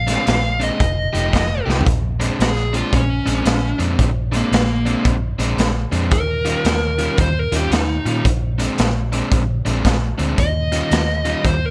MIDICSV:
0, 0, Header, 1, 5, 480
1, 0, Start_track
1, 0, Tempo, 532387
1, 1679, Time_signature, 4, 2, 24, 8
1, 10553, End_track
2, 0, Start_track
2, 0, Title_t, "Lead electric guitar"
2, 0, Program_c, 0, 29
2, 0, Note_on_c, 0, 77, 88
2, 568, Note_on_c, 0, 75, 78
2, 579, Note_off_c, 0, 77, 0
2, 1481, Note_off_c, 0, 75, 0
2, 2175, Note_on_c, 0, 68, 80
2, 2464, Note_off_c, 0, 68, 0
2, 2487, Note_on_c, 0, 65, 71
2, 2644, Note_off_c, 0, 65, 0
2, 2650, Note_on_c, 0, 61, 74
2, 3407, Note_off_c, 0, 61, 0
2, 3925, Note_on_c, 0, 58, 73
2, 4083, Note_off_c, 0, 58, 0
2, 4103, Note_on_c, 0, 58, 77
2, 4556, Note_off_c, 0, 58, 0
2, 5530, Note_on_c, 0, 70, 83
2, 6455, Note_off_c, 0, 70, 0
2, 6496, Note_on_c, 0, 72, 72
2, 6664, Note_off_c, 0, 72, 0
2, 6664, Note_on_c, 0, 70, 81
2, 6806, Note_off_c, 0, 70, 0
2, 6821, Note_on_c, 0, 67, 78
2, 6965, Note_off_c, 0, 67, 0
2, 6975, Note_on_c, 0, 63, 89
2, 7432, Note_off_c, 0, 63, 0
2, 9373, Note_on_c, 0, 75, 102
2, 10299, Note_off_c, 0, 75, 0
2, 10333, Note_on_c, 0, 72, 74
2, 10509, Note_off_c, 0, 72, 0
2, 10509, Note_on_c, 0, 70, 71
2, 10553, Note_off_c, 0, 70, 0
2, 10553, End_track
3, 0, Start_track
3, 0, Title_t, "Overdriven electric guitar"
3, 0, Program_c, 1, 29
3, 62, Note_on_c, 1, 62, 91
3, 66, Note_on_c, 1, 60, 87
3, 71, Note_on_c, 1, 56, 76
3, 74, Note_on_c, 1, 46, 69
3, 330, Note_off_c, 1, 62, 0
3, 332, Note_off_c, 1, 60, 0
3, 334, Note_off_c, 1, 56, 0
3, 336, Note_off_c, 1, 46, 0
3, 538, Note_on_c, 1, 62, 69
3, 544, Note_on_c, 1, 60, 71
3, 547, Note_on_c, 1, 56, 66
3, 549, Note_on_c, 1, 46, 65
3, 716, Note_off_c, 1, 62, 0
3, 718, Note_off_c, 1, 60, 0
3, 720, Note_off_c, 1, 56, 0
3, 721, Note_off_c, 1, 46, 0
3, 1018, Note_on_c, 1, 67, 80
3, 1023, Note_on_c, 1, 63, 83
3, 1028, Note_on_c, 1, 57, 76
3, 1030, Note_on_c, 1, 53, 76
3, 1287, Note_off_c, 1, 67, 0
3, 1290, Note_off_c, 1, 63, 0
3, 1292, Note_off_c, 1, 57, 0
3, 1293, Note_off_c, 1, 53, 0
3, 1494, Note_on_c, 1, 67, 73
3, 1501, Note_on_c, 1, 63, 65
3, 1503, Note_on_c, 1, 57, 63
3, 1507, Note_on_c, 1, 53, 64
3, 1673, Note_off_c, 1, 67, 0
3, 1677, Note_off_c, 1, 57, 0
3, 1677, Note_off_c, 1, 63, 0
3, 1679, Note_off_c, 1, 53, 0
3, 1981, Note_on_c, 1, 62, 74
3, 1982, Note_on_c, 1, 60, 77
3, 1986, Note_on_c, 1, 56, 76
3, 1988, Note_on_c, 1, 46, 65
3, 2248, Note_off_c, 1, 60, 0
3, 2248, Note_off_c, 1, 62, 0
3, 2250, Note_off_c, 1, 56, 0
3, 2252, Note_off_c, 1, 46, 0
3, 2461, Note_on_c, 1, 62, 73
3, 2464, Note_on_c, 1, 60, 64
3, 2467, Note_on_c, 1, 56, 65
3, 2473, Note_on_c, 1, 46, 53
3, 2728, Note_off_c, 1, 62, 0
3, 2729, Note_off_c, 1, 60, 0
3, 2731, Note_off_c, 1, 56, 0
3, 2734, Note_off_c, 1, 46, 0
3, 2935, Note_on_c, 1, 62, 78
3, 2940, Note_on_c, 1, 60, 75
3, 2943, Note_on_c, 1, 56, 75
3, 2948, Note_on_c, 1, 46, 65
3, 3205, Note_off_c, 1, 62, 0
3, 3207, Note_off_c, 1, 60, 0
3, 3209, Note_off_c, 1, 56, 0
3, 3211, Note_off_c, 1, 46, 0
3, 3413, Note_on_c, 1, 62, 79
3, 3419, Note_on_c, 1, 60, 75
3, 3421, Note_on_c, 1, 56, 62
3, 3426, Note_on_c, 1, 46, 68
3, 3684, Note_off_c, 1, 62, 0
3, 3686, Note_off_c, 1, 60, 0
3, 3688, Note_off_c, 1, 56, 0
3, 3690, Note_off_c, 1, 46, 0
3, 3893, Note_on_c, 1, 62, 88
3, 3898, Note_on_c, 1, 60, 75
3, 3904, Note_on_c, 1, 56, 79
3, 3906, Note_on_c, 1, 46, 69
3, 4164, Note_off_c, 1, 62, 0
3, 4166, Note_off_c, 1, 60, 0
3, 4169, Note_off_c, 1, 56, 0
3, 4170, Note_off_c, 1, 46, 0
3, 4376, Note_on_c, 1, 62, 73
3, 4380, Note_on_c, 1, 60, 72
3, 4385, Note_on_c, 1, 46, 55
3, 4386, Note_on_c, 1, 56, 58
3, 4645, Note_off_c, 1, 62, 0
3, 4647, Note_off_c, 1, 60, 0
3, 4650, Note_off_c, 1, 46, 0
3, 4650, Note_off_c, 1, 56, 0
3, 4856, Note_on_c, 1, 60, 79
3, 4856, Note_on_c, 1, 62, 89
3, 4862, Note_on_c, 1, 56, 84
3, 4865, Note_on_c, 1, 46, 68
3, 5125, Note_off_c, 1, 60, 0
3, 5125, Note_off_c, 1, 62, 0
3, 5128, Note_off_c, 1, 56, 0
3, 5130, Note_off_c, 1, 46, 0
3, 5335, Note_on_c, 1, 62, 79
3, 5340, Note_on_c, 1, 60, 73
3, 5341, Note_on_c, 1, 56, 70
3, 5345, Note_on_c, 1, 46, 65
3, 5512, Note_off_c, 1, 62, 0
3, 5515, Note_off_c, 1, 60, 0
3, 5516, Note_off_c, 1, 56, 0
3, 5517, Note_off_c, 1, 46, 0
3, 5813, Note_on_c, 1, 65, 83
3, 5818, Note_on_c, 1, 61, 79
3, 5822, Note_on_c, 1, 55, 82
3, 5826, Note_on_c, 1, 51, 74
3, 6083, Note_off_c, 1, 65, 0
3, 6086, Note_off_c, 1, 61, 0
3, 6088, Note_off_c, 1, 55, 0
3, 6090, Note_off_c, 1, 51, 0
3, 6296, Note_on_c, 1, 65, 71
3, 6301, Note_on_c, 1, 61, 71
3, 6302, Note_on_c, 1, 55, 68
3, 6307, Note_on_c, 1, 51, 61
3, 6565, Note_off_c, 1, 65, 0
3, 6568, Note_off_c, 1, 55, 0
3, 6568, Note_off_c, 1, 61, 0
3, 6570, Note_off_c, 1, 51, 0
3, 6780, Note_on_c, 1, 65, 83
3, 6785, Note_on_c, 1, 61, 88
3, 6787, Note_on_c, 1, 55, 74
3, 6793, Note_on_c, 1, 51, 74
3, 7047, Note_off_c, 1, 65, 0
3, 7050, Note_off_c, 1, 61, 0
3, 7051, Note_off_c, 1, 55, 0
3, 7053, Note_off_c, 1, 51, 0
3, 7262, Note_on_c, 1, 65, 73
3, 7265, Note_on_c, 1, 61, 72
3, 7269, Note_on_c, 1, 55, 64
3, 7272, Note_on_c, 1, 51, 63
3, 7436, Note_off_c, 1, 65, 0
3, 7438, Note_off_c, 1, 61, 0
3, 7440, Note_off_c, 1, 55, 0
3, 7441, Note_off_c, 1, 51, 0
3, 7740, Note_on_c, 1, 62, 84
3, 7743, Note_on_c, 1, 60, 90
3, 7746, Note_on_c, 1, 56, 82
3, 7751, Note_on_c, 1, 46, 79
3, 8007, Note_off_c, 1, 62, 0
3, 8009, Note_off_c, 1, 60, 0
3, 8010, Note_off_c, 1, 56, 0
3, 8013, Note_off_c, 1, 46, 0
3, 8224, Note_on_c, 1, 62, 72
3, 8228, Note_on_c, 1, 60, 68
3, 8232, Note_on_c, 1, 56, 60
3, 8236, Note_on_c, 1, 46, 56
3, 8490, Note_off_c, 1, 62, 0
3, 8492, Note_off_c, 1, 60, 0
3, 8494, Note_off_c, 1, 56, 0
3, 8496, Note_off_c, 1, 46, 0
3, 8703, Note_on_c, 1, 62, 88
3, 8707, Note_on_c, 1, 60, 89
3, 8708, Note_on_c, 1, 56, 78
3, 8711, Note_on_c, 1, 46, 65
3, 8969, Note_off_c, 1, 62, 0
3, 8971, Note_off_c, 1, 60, 0
3, 8972, Note_off_c, 1, 56, 0
3, 8973, Note_off_c, 1, 46, 0
3, 9178, Note_on_c, 1, 62, 73
3, 9182, Note_on_c, 1, 60, 74
3, 9188, Note_on_c, 1, 56, 64
3, 9190, Note_on_c, 1, 46, 63
3, 9355, Note_off_c, 1, 62, 0
3, 9357, Note_off_c, 1, 60, 0
3, 9360, Note_off_c, 1, 56, 0
3, 9361, Note_off_c, 1, 46, 0
3, 9663, Note_on_c, 1, 65, 80
3, 9664, Note_on_c, 1, 61, 77
3, 9667, Note_on_c, 1, 55, 70
3, 9672, Note_on_c, 1, 51, 78
3, 9930, Note_off_c, 1, 61, 0
3, 9930, Note_off_c, 1, 65, 0
3, 9932, Note_off_c, 1, 55, 0
3, 9935, Note_off_c, 1, 51, 0
3, 10142, Note_on_c, 1, 65, 67
3, 10147, Note_on_c, 1, 61, 63
3, 10148, Note_on_c, 1, 55, 69
3, 10153, Note_on_c, 1, 51, 62
3, 10410, Note_off_c, 1, 65, 0
3, 10413, Note_off_c, 1, 55, 0
3, 10413, Note_off_c, 1, 61, 0
3, 10415, Note_off_c, 1, 51, 0
3, 10553, End_track
4, 0, Start_track
4, 0, Title_t, "Fingered electric bass"
4, 0, Program_c, 2, 33
4, 0, Note_on_c, 2, 34, 97
4, 142, Note_off_c, 2, 34, 0
4, 245, Note_on_c, 2, 34, 86
4, 623, Note_off_c, 2, 34, 0
4, 724, Note_on_c, 2, 29, 83
4, 966, Note_off_c, 2, 29, 0
4, 1031, Note_on_c, 2, 29, 86
4, 1166, Note_off_c, 2, 29, 0
4, 1203, Note_on_c, 2, 29, 79
4, 1445, Note_off_c, 2, 29, 0
4, 1506, Note_on_c, 2, 36, 76
4, 1643, Note_off_c, 2, 36, 0
4, 1682, Note_on_c, 2, 34, 92
4, 2060, Note_off_c, 2, 34, 0
4, 2158, Note_on_c, 2, 34, 83
4, 2538, Note_off_c, 2, 34, 0
4, 2638, Note_on_c, 2, 34, 84
4, 2881, Note_off_c, 2, 34, 0
4, 2945, Note_on_c, 2, 34, 83
4, 3082, Note_off_c, 2, 34, 0
4, 3114, Note_on_c, 2, 34, 80
4, 3358, Note_off_c, 2, 34, 0
4, 3419, Note_on_c, 2, 41, 78
4, 3558, Note_off_c, 2, 41, 0
4, 3597, Note_on_c, 2, 34, 95
4, 3977, Note_off_c, 2, 34, 0
4, 4071, Note_on_c, 2, 34, 82
4, 4453, Note_off_c, 2, 34, 0
4, 4554, Note_on_c, 2, 34, 81
4, 4798, Note_off_c, 2, 34, 0
4, 4853, Note_on_c, 2, 34, 88
4, 4994, Note_off_c, 2, 34, 0
4, 5025, Note_on_c, 2, 34, 75
4, 5273, Note_off_c, 2, 34, 0
4, 5337, Note_on_c, 2, 41, 81
4, 5515, Note_off_c, 2, 41, 0
4, 5515, Note_on_c, 2, 39, 95
4, 5896, Note_off_c, 2, 39, 0
4, 5993, Note_on_c, 2, 39, 88
4, 6375, Note_off_c, 2, 39, 0
4, 6477, Note_on_c, 2, 39, 91
4, 6720, Note_off_c, 2, 39, 0
4, 6779, Note_on_c, 2, 39, 80
4, 6918, Note_off_c, 2, 39, 0
4, 6949, Note_on_c, 2, 39, 78
4, 7195, Note_off_c, 2, 39, 0
4, 7261, Note_on_c, 2, 46, 79
4, 7399, Note_off_c, 2, 46, 0
4, 7440, Note_on_c, 2, 34, 96
4, 7819, Note_off_c, 2, 34, 0
4, 7922, Note_on_c, 2, 34, 90
4, 8301, Note_off_c, 2, 34, 0
4, 8403, Note_on_c, 2, 34, 85
4, 8644, Note_off_c, 2, 34, 0
4, 8712, Note_on_c, 2, 34, 83
4, 8846, Note_off_c, 2, 34, 0
4, 8883, Note_on_c, 2, 34, 79
4, 9124, Note_off_c, 2, 34, 0
4, 9187, Note_on_c, 2, 38, 81
4, 9323, Note_off_c, 2, 38, 0
4, 9359, Note_on_c, 2, 39, 93
4, 9739, Note_off_c, 2, 39, 0
4, 9838, Note_on_c, 2, 39, 82
4, 10219, Note_off_c, 2, 39, 0
4, 10318, Note_on_c, 2, 39, 84
4, 10553, Note_off_c, 2, 39, 0
4, 10553, End_track
5, 0, Start_track
5, 0, Title_t, "Drums"
5, 69, Note_on_c, 9, 42, 62
5, 84, Note_on_c, 9, 38, 32
5, 159, Note_off_c, 9, 42, 0
5, 174, Note_off_c, 9, 38, 0
5, 242, Note_on_c, 9, 42, 82
5, 257, Note_on_c, 9, 38, 111
5, 332, Note_off_c, 9, 42, 0
5, 347, Note_off_c, 9, 38, 0
5, 551, Note_on_c, 9, 42, 60
5, 641, Note_off_c, 9, 42, 0
5, 723, Note_on_c, 9, 36, 109
5, 725, Note_on_c, 9, 42, 78
5, 813, Note_off_c, 9, 36, 0
5, 815, Note_off_c, 9, 42, 0
5, 1034, Note_on_c, 9, 42, 57
5, 1124, Note_off_c, 9, 42, 0
5, 1202, Note_on_c, 9, 36, 73
5, 1208, Note_on_c, 9, 42, 75
5, 1223, Note_on_c, 9, 38, 96
5, 1292, Note_off_c, 9, 36, 0
5, 1298, Note_off_c, 9, 42, 0
5, 1313, Note_off_c, 9, 38, 0
5, 1529, Note_on_c, 9, 38, 59
5, 1619, Note_off_c, 9, 38, 0
5, 1630, Note_on_c, 9, 43, 80
5, 1682, Note_on_c, 9, 36, 99
5, 1685, Note_on_c, 9, 42, 77
5, 1720, Note_off_c, 9, 43, 0
5, 1772, Note_off_c, 9, 36, 0
5, 1775, Note_off_c, 9, 42, 0
5, 1992, Note_on_c, 9, 42, 57
5, 2082, Note_off_c, 9, 42, 0
5, 2166, Note_on_c, 9, 42, 81
5, 2182, Note_on_c, 9, 38, 97
5, 2256, Note_off_c, 9, 42, 0
5, 2272, Note_off_c, 9, 38, 0
5, 2470, Note_on_c, 9, 42, 60
5, 2560, Note_off_c, 9, 42, 0
5, 2640, Note_on_c, 9, 36, 100
5, 2641, Note_on_c, 9, 42, 86
5, 2730, Note_off_c, 9, 36, 0
5, 2731, Note_off_c, 9, 42, 0
5, 2947, Note_on_c, 9, 42, 58
5, 3037, Note_off_c, 9, 42, 0
5, 3115, Note_on_c, 9, 42, 78
5, 3130, Note_on_c, 9, 38, 98
5, 3205, Note_off_c, 9, 42, 0
5, 3220, Note_off_c, 9, 38, 0
5, 3424, Note_on_c, 9, 42, 62
5, 3514, Note_off_c, 9, 42, 0
5, 3597, Note_on_c, 9, 36, 98
5, 3598, Note_on_c, 9, 42, 80
5, 3687, Note_off_c, 9, 36, 0
5, 3688, Note_off_c, 9, 42, 0
5, 3908, Note_on_c, 9, 42, 59
5, 3998, Note_off_c, 9, 42, 0
5, 4080, Note_on_c, 9, 42, 82
5, 4096, Note_on_c, 9, 38, 112
5, 4171, Note_off_c, 9, 42, 0
5, 4186, Note_off_c, 9, 38, 0
5, 4385, Note_on_c, 9, 42, 54
5, 4475, Note_off_c, 9, 42, 0
5, 4555, Note_on_c, 9, 36, 102
5, 4555, Note_on_c, 9, 42, 73
5, 4645, Note_off_c, 9, 36, 0
5, 4645, Note_off_c, 9, 42, 0
5, 4864, Note_on_c, 9, 42, 57
5, 4954, Note_off_c, 9, 42, 0
5, 5033, Note_on_c, 9, 42, 73
5, 5049, Note_on_c, 9, 38, 92
5, 5124, Note_off_c, 9, 42, 0
5, 5139, Note_off_c, 9, 38, 0
5, 5339, Note_on_c, 9, 42, 56
5, 5430, Note_off_c, 9, 42, 0
5, 5510, Note_on_c, 9, 42, 75
5, 5514, Note_on_c, 9, 36, 106
5, 5600, Note_off_c, 9, 42, 0
5, 5604, Note_off_c, 9, 36, 0
5, 5819, Note_on_c, 9, 42, 59
5, 5909, Note_off_c, 9, 42, 0
5, 5993, Note_on_c, 9, 42, 82
5, 6008, Note_on_c, 9, 38, 105
5, 6083, Note_off_c, 9, 42, 0
5, 6098, Note_off_c, 9, 38, 0
5, 6299, Note_on_c, 9, 42, 60
5, 6389, Note_off_c, 9, 42, 0
5, 6471, Note_on_c, 9, 42, 80
5, 6476, Note_on_c, 9, 36, 102
5, 6561, Note_off_c, 9, 42, 0
5, 6566, Note_off_c, 9, 36, 0
5, 6782, Note_on_c, 9, 42, 61
5, 6872, Note_off_c, 9, 42, 0
5, 6957, Note_on_c, 9, 42, 77
5, 6973, Note_on_c, 9, 38, 103
5, 7048, Note_off_c, 9, 42, 0
5, 7063, Note_off_c, 9, 38, 0
5, 7268, Note_on_c, 9, 42, 59
5, 7358, Note_off_c, 9, 42, 0
5, 7439, Note_on_c, 9, 36, 103
5, 7440, Note_on_c, 9, 42, 85
5, 7529, Note_off_c, 9, 36, 0
5, 7530, Note_off_c, 9, 42, 0
5, 7749, Note_on_c, 9, 42, 64
5, 7839, Note_off_c, 9, 42, 0
5, 7917, Note_on_c, 9, 42, 80
5, 7932, Note_on_c, 9, 38, 104
5, 8007, Note_off_c, 9, 42, 0
5, 8023, Note_off_c, 9, 38, 0
5, 8229, Note_on_c, 9, 42, 62
5, 8319, Note_off_c, 9, 42, 0
5, 8400, Note_on_c, 9, 36, 104
5, 8400, Note_on_c, 9, 42, 80
5, 8490, Note_off_c, 9, 36, 0
5, 8491, Note_off_c, 9, 42, 0
5, 8709, Note_on_c, 9, 42, 56
5, 8799, Note_off_c, 9, 42, 0
5, 8879, Note_on_c, 9, 36, 72
5, 8880, Note_on_c, 9, 42, 73
5, 8895, Note_on_c, 9, 38, 102
5, 8970, Note_off_c, 9, 36, 0
5, 8970, Note_off_c, 9, 42, 0
5, 8985, Note_off_c, 9, 38, 0
5, 9189, Note_on_c, 9, 42, 57
5, 9279, Note_off_c, 9, 42, 0
5, 9360, Note_on_c, 9, 36, 105
5, 9361, Note_on_c, 9, 42, 73
5, 9450, Note_off_c, 9, 36, 0
5, 9451, Note_off_c, 9, 42, 0
5, 9667, Note_on_c, 9, 42, 57
5, 9758, Note_off_c, 9, 42, 0
5, 9840, Note_on_c, 9, 42, 79
5, 9855, Note_on_c, 9, 38, 106
5, 9930, Note_off_c, 9, 42, 0
5, 9945, Note_off_c, 9, 38, 0
5, 10146, Note_on_c, 9, 42, 57
5, 10236, Note_off_c, 9, 42, 0
5, 10319, Note_on_c, 9, 42, 78
5, 10320, Note_on_c, 9, 36, 103
5, 10409, Note_off_c, 9, 42, 0
5, 10410, Note_off_c, 9, 36, 0
5, 10553, End_track
0, 0, End_of_file